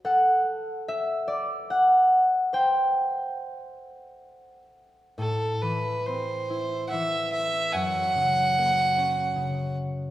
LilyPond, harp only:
\new Staff \with { instrumentName = "Harp" } { \time 3/4 \key a \dorian \tempo 4 = 71 << { fis''4 e''8 d''8 fis''4 | g''2 r4 | a,8 e8 c'8 e'8 e4 | fis,8 cis8 ais8 cis'8 cis4 | } \\ { a'4. r4. | c''2 r4 | r2. | r2. | } >> }